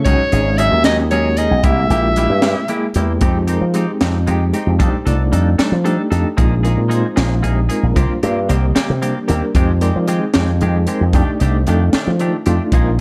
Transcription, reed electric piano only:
0.05 G#3 C#4 D#4 F#4
0.32 G#3 C#4 D#4 G#4
0.59 G#3 C#4 D#4 F#4
1.11 G#3 C#4 D#4 F#4
1.39 G#3 C#4 D#4 G#4
1.63 G#3 A#3 E4 G4
1.90 G#3 A#3 E4 G4
2.16 G#3 A#3 E4 G4
2.70 G#3 A#3 E4 G#4
2.96 G#3 A#3 E4 G4
3.21 G#3 C4 D#4 G4
3.48 G#3 C4 D#4 G#4 A#4
3.74 G#3 C4 D#4 G4
4.27 G#3 C4 D#4 G4
4.53 G#3 C4 D#4 G4
4.80 A3 D4 D#4 G4 C5
5.06 A3 D4 D#4 F4 D5
5.32 A3 D4 D#4 A4
5.85 A3 D4 D#4 G4
6.11 A3 D4 D#4 G4 A4
6.39 G#3 C4 D#4 F4 G#4
6.65 G#3 C4 D#4 F4 A#4
6.90 G#3 C4 D#4 F4
6.94 C5
7.43 G#3 C4 D#4 G4
7.69 G#3 C4 D#4 F4 A#4
7.96 G3 A#3 D4 F4 C5
8.22 G3 A#3 D4 F4 D5
8.49 D3 G3 A#3 G4 D#5
9.02 G3 A#3 D4 G4
9.27 G3 A#3 D4 G4 A#4
9.54 G#3 C4 D#4 G4 C5
9.81 G#3 C4 D#4 A#4 D5
10.08 G#3 C4 D#4 G#4 D#5
10.61 G#3 C4 D#4 G#4
10.87 G#3 C4 D#4 A#4 C5
11.13 A3 D4 D#4 G4 D5
11.40 A3 D4 D#4 G4 D#5
11.67 A3 D4 D#4 A4 F5
12.19 A3 D4 D#4 F4
12.46 A3 D4 D#4 F4
12.73 G#3 C4 D#4 F4 A#4

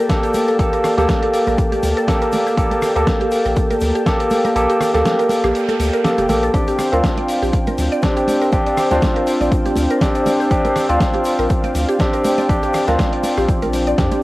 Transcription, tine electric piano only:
0.09 A#3 G4 A4
0.59 A#3 G4 A4
0.97 A#3 G4 A4
2.08 A#3 G4 A4
2.57 A#3 G4 A4
2.96 A#3 G4 A4
4.06 A#3 G4 A4
4.56 A#3 G4 A4
4.94 A#3 G4 A4
6.04 A#3 G4 A4
6.29 A#3 G4 A4
6.54 C4 D4 G4
6.92 C4 D4 F4
8.03 C4 D4 G4
8.52 C4 D4 G4
8.91 C4 D4 F4
10.01 C4 D4 G4
10.51 C4 D4 G4
10.89 C4 D4 F4
11.99 C4 D4 G4
12.49 C4 D4 G4
12.87 C4 D4 F4
13.98 C4 D4 G4

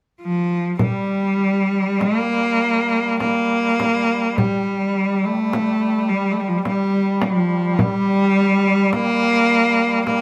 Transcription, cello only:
0.21 F3
0.81 G3
2.01 A#3
3.20 A#3
4.39 G3
5.25 A3
6.10 G3
6.32 A3
6.40 G3
6.48 F3
6.58 G3
6.66 G3
7.22 F3
7.79 G3
8.94 A#3
10.06 A#3

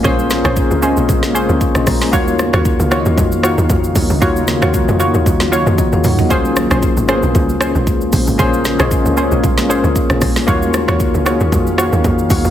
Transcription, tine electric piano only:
Already playing: A#3 C#4 F4 G#4 C5
0.03 A#3 C#4 F4 G#4 C5
0.43 A#3 C#4 F4 G#4 C5
0.81 A#3 C4 F4 G#4 D#5
0.88 C#4
1.33 A#3 C#4 F4 G#4 C5
1.61 F5 C#6
1.76 D#5 C6
1.87 C#5 A#5
2.02 C5 G#5
2.12 A#3 D#4 F4 F#4 C#5
2.90 A#3 D#4 F4 F#4 C#5
3.00 D#5
4.20 A#3 D#4 F4 F#4 C#5
4.61 A#3 D#4 F4 F#4 C#5
4.99 A#3 D#4 F4 F#4 C#5
5.51 A#3 D#4 F4 F#4 C#5
5.79 F#4 D#5
5.93 G#4 F5
6.05 A#4 F#5
6.19 F#4 D#5
6.29 A#3 C#4 F4 G#4 C5
7.08 A#3 C#4 F4 G#4 B4
7.17 C5
8.38 A#3 C#4 F4 G#4 C5
8.78 A#3 C#4 F4 G#4 D#5
9.16 A#3 C#4 F4 G#4 C#5
9.68 A#3 C#4 F4 G#4 C#5
10.47 A#3 D#4 F4 F#4 C#5
11.25 A#3 D#4 F4 F#4 G#4

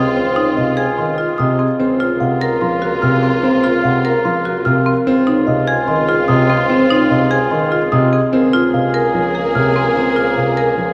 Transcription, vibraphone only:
Already playing: G#4
0.17 C5
0.37 C#5
0.57 F5
0.78 G#5
0.98 D#5
1.19 G#4
1.40 D#5
1.60 G#4
1.80 C5
2.01 C#5
2.20 F#5
2.41 A#5
2.61 F5
2.82 A#4
3.02 F5
3.23 A#4
3.43 C5
3.63 C#5
3.84 F#5
4.04 A#5
4.25 F5
4.45 A#4
4.66 F5
4.86 A#4
5.07 C5
5.27 C#5
5.47 F5
5.67 G#5
5.88 D#5
6.08 G#4
6.28 D#5
6.48 G#4
6.69 C5
6.89 C#5
7.10 F5
7.31 G#5
7.51 D#5
7.71 G#4
7.92 D#5
8.13 G#4
8.33 A#4
8.54 C5
8.74 F5
8.94 G#5
9.16 C#5
9.36 G#4
9.55 C#5
9.75 G#4
9.96 A#4
10.17 C5
10.38 F5
10.58 G#5
10.78 C#5

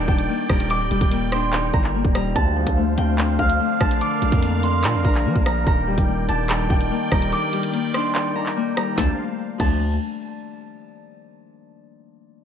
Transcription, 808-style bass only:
0.08 D#1
0.50 D#1
0.80 D1
0.91 D#1
1.01 D#1
1.74 G1
2.05 D#1
2.36 D2
2.67 D2
2.98 D2
3.39 D2
3.81 A#1
4.22 A#1
4.32 F2
4.84 A#2
4.94 F2
5.05 A#1
5.25 F3
5.36 A#1
5.67 D#1
5.98 D#1
6.29 D#1
6.70 D#1
7.12 D#1
8.98 D2
9.60 D2

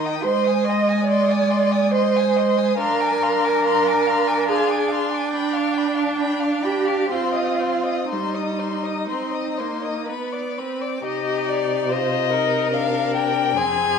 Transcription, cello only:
Already playing: D#4
0.24 C5
0.64 D#5
1.05 D5
1.91 C5
2.78 A#4
4.49 G#4
5.33 D4
6.65 G4
7.12 F4
8.10 D#4
11.03 C3
13.55 F2

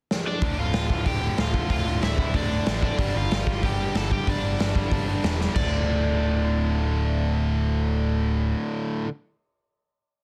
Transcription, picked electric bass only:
0.42 D1
0.58 D1
0.74 D1
0.90 D1
1.06 D1
1.38 D1
1.70 D1
1.88 D1
2.03 D1
2.18 D1
2.34 D1
2.67 A1
2.98 G1
3.15 G1
3.31 G1
3.47 G1
3.63 G1
3.95 G1
4.27 G1
4.44 G1
4.60 G1
4.76 G1
4.92 G1
5.24 E1
5.56 D1

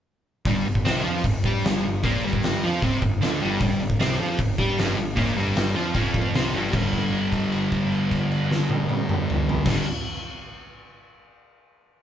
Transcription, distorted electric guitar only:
0.46 G2 G3
0.66 G2
0.85 C3 C4
1.04 F3 F4
1.23 G2
1.45 G3 G4
1.65 G2 G3
1.84 G2
2.03 A#2 A#3
2.24 G2 G3
2.63 F3 F4
2.83 C3 C4
3.02 G2
3.22 D3 D4
3.41 G2 G3
3.62 G2 G3
3.81 G2
4.00 C3 C4
4.20 F3 F4
4.40 G2
4.58 G3 G4
4.79 G2 G3
4.98 G2
5.16 A#2 A#3
5.35 G2 G3
5.75 F3 F4
5.94 F2 F3
6.35 C3 C4
6.54 G2 G3
6.73 G2 D3 G3
9.65 G2 D3
9.70 G3

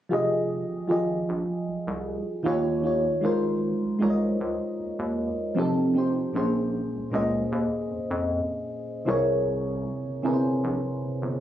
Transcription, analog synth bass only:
0.12 F1
0.71 G#1
0.90 G#1
1.29 A#1
1.68 C2
1.87 C2
2.46 D#2
3.24 G#1
3.82 C2
4.02 C2
4.41 C#2
4.80 D#2
4.99 D#2
5.57 F1
6.35 A#1
6.94 C#2
7.13 C#2
7.52 D#2
7.91 F2
8.11 F2
9.08 C2
10.05 G1
10.25 G1
10.64 A#1
11.03 G1
11.22 G1

